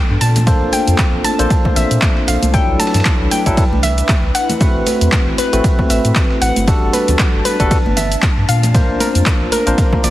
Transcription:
Already playing: analog synth pad B3 D4 A4, synth pluck G5
0.10 analog synth bass G2
0.21 analog synth bass A#2, analog synth pad C4 F4, synth pluck A5, open hi-hat, ride, shaker
0.36 snare, closed hi-hat, high conga, low conga, shaker
0.47 tine electric piano A#3 D4 A4 C5, kick, closed hi-hat, ride, shaker
0.62 analog synth bass A#1
0.73 synth pluck G5, open hi-hat, ride, high conga, shaker
0.88 analog synth bass F2, closed hi-hat, shaker
0.98 kick, snare, clap, closed hi-hat, ride, shaker
1.13 analog synth bass A#1
1.24 synth pluck A5, open hi-hat, ride, high conga, shaker
1.39 analog synth bass A#1, tine electric piano A#3 D4 A4 C5, closed hi-hat, shaker
1.50 kick, closed hi-hat, ride, shaker
1.65 kick, high conga, low conga
1.76 analog synth bass A#1, synth pluck E5, open hi-hat, ride, low conga, shaker
1.91 analog synth bass A#2, closed hi-hat, shaker
2.02 kick, snare, clap, closed hi-hat, ride, high conga, shaker
2.17 snare
2.28 analog synth bass A#1, synth pluck F5, open hi-hat, ride, shaker
2.42 analog synth bass C2, closed hi-hat, high conga, shaker
2.54 tine electric piano F#3 D4 E4 A4, analog synth pad D4 E4 B4, synth pluck G5, kick, closed hi-hat, ride, shaker
2.69 analog synth bass C2
2.80 synth pluck A5, snare, open hi-hat, ride, high conga, shaker
2.87 snare, ride
2.94 analog synth bass G2, snare, closed hi-hat, ride, low conga, shaker
3.00 snare, ride
3.05 kick, snare, clap, closed hi-hat, ride, shaker
3.20 analog synth bass C2
3.31 synth pluck G5, open hi-hat, ride, high conga, shaker
3.46 analog synth bass C2, tine electric piano F#3 D4 E4 A4, kick, closed hi-hat, shaker
3.57 kick, closed hi-hat, ride, shaker
3.72 analog synth bass C2, high conga
3.83 synth pluck E5, snare, open hi-hat, ride, low conga, shaker
3.98 closed hi-hat, shaker
4.08 kick, snare, clap, closed hi-hat, ride, high conga, shaker
4.24 analog synth bass C2
4.35 synth pluck F#5, open hi-hat, ride, shaker
4.49 snare, closed hi-hat, high conga, low conga, shaker
4.60 tine electric piano A3 C4 F#4 B4, analog synth pad C4, kick, closed hi-hat, ride, shaker
4.75 analog synth bass A1
4.86 synth pluck B4, open hi-hat, ride, high conga, shaker
5.01 analog synth bass E2, closed hi-hat, shaker
5.12 kick, snare, clap, closed hi-hat, ride, shaker
5.27 analog synth bass A1
5.38 synth pluck B4, open hi-hat, ride, high conga, shaker
5.53 analog synth bass A1, tine electric piano A3 C4 F#4 B4, closed hi-hat, shaker
5.64 kick, closed hi-hat, ride, shaker
5.79 kick, high conga, low conga
5.90 analog synth bass A1, synth pluck E5, open hi-hat, ride, low conga, shaker
6.05 analog synth bass A2, closed hi-hat, shaker
6.15 kick, snare, clap, closed hi-hat, ride, high conga, shaker
6.31 snare
6.42 analog synth bass A1, synth pluck F#5, open hi-hat, ride, shaker
6.56 analog synth bass G1, closed hi-hat, high conga, shaker
6.67 tine electric piano G3 D4 F#4 A4, analog synth pad B3 D4 A5, kick, closed hi-hat, ride, shaker
6.82 analog synth bass G1
6.93 synth pluck B4, open hi-hat, ride, high conga, shaker
7.08 analog synth bass D2, snare, closed hi-hat, low conga, shaker
7.19 kick, snare, clap, closed hi-hat, ride, shaker
7.34 analog synth bass G1
7.45 synth pluck B4, open hi-hat, ride, high conga, shaker
7.60 analog synth bass G1, tine electric piano G3 D4 F#4 A4, kick, closed hi-hat, shaker
7.71 kick, closed hi-hat, ride, shaker
7.86 analog synth bass G1, high conga
7.97 synth pluck E5, snare, open hi-hat, ride, low conga, shaker
8.12 closed hi-hat, shaker
8.22 kick, snare, clap, closed hi-hat, ride, high conga, shaker
8.38 analog synth bass G2
8.48 analog synth bass A#2, analog synth pad C4 F4, synth pluck F5, open hi-hat, ride, shaker
8.63 snare, closed hi-hat, high conga, low conga, shaker
8.74 tine electric piano A#3 D4 A#4 C5, kick, closed hi-hat, ride, shaker
8.89 analog synth bass A#1
9.00 synth pluck A#4, open hi-hat, ride, high conga, shaker
9.15 analog synth bass F2, closed hi-hat, shaker
9.26 kick, snare, clap, closed hi-hat, ride, shaker
9.41 analog synth bass A#1
9.52 synth pluck A#4, open hi-hat, ride, high conga, shaker
9.66 analog synth bass A#1, tine electric piano A#3 D4 A#4 C5, closed hi-hat, shaker
9.78 kick, closed hi-hat, ride, shaker
9.93 kick, high conga, low conga
10.04 analog synth bass A#1, synth pluck D5, open hi-hat, ride, low conga, shaker

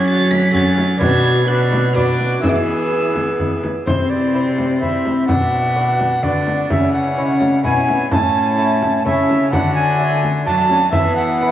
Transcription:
Already playing: lute F#3 C#4 A4, cello F#3, viola C#4, recorder F#4
0.07 violin A6
0.31 violin B6, frame drum
0.50 lute C#4 A4, viola C#4, recorder F#4, violin A6, frame drum
0.77 frame drum
0.97 lute B2 D4 B4, cello B2, viola D4, recorder F#4, violin G#6, frame drum
1.45 lute D4 B4, viola D4, recorder F#4, violin F#6
1.72 frame drum
1.93 lute D4 B4, viola D4, recorder F#4, violin D6, frame drum
2.20 frame drum
2.40 cello E3, lute G#3 E4 B4, viola B3, recorder G#4, violin E6, frame drum
2.44 lute E3
2.49 violin D6
2.56 violin E6
3.16 frame drum
3.39 frame drum
3.64 frame drum
3.86 lute C3, cello C3, viola C4, violin E4, recorder C5, frame drum
4.10 recorder D5
4.35 lute E4 C5
4.58 frame drum
4.80 viola C4, violin E4, lute E4 C5, recorder E5, frame drum
5.05 frame drum
5.27 lute B2, cello B2, viola D4, violin F#4, recorder F#5, frame drum
5.76 lute B3 F#4 D5
6.00 frame drum
6.22 lute D3 B3 F#4 D5, cello D3, viola D4, violin F#4, recorder D5, frame drum
6.46 frame drum
6.69 lute C#3, cello C#3, viola C#4, violin E4, recorder E5, frame drum
6.93 recorder F#5
7.17 lute G#3 E4 C#5
7.41 frame drum
7.63 lute B2 G#3 E4 C#5, cello B2, viola C#4, violin E4, recorder G#5, frame drum
7.88 frame drum
8.10 lute A2, cello A2, viola C#4, violin E4, recorder A5, frame drum
8.57 lute A3 E4 C#5
8.82 frame drum
9.05 lute C#3 A3 E4 C#5, cello C#3, viola C#4, violin E4, recorder E5, frame drum
9.30 frame drum
9.52 cello D3, lute D3, viola D4, violin F#4, recorder F#5, frame drum
9.75 recorder G#5
9.98 lute A3 F#4 D5
10.23 frame drum
10.46 cello F#3, lute F#3 A3 F#4 D5, viola D4, violin F#4, recorder A5, frame drum
10.70 viola C#4, frame drum
10.91 cello E3, lute E3, viola B3, violin G#4, recorder E5, frame drum
11.16 recorder F#5
11.41 lute G#3 E4 B4

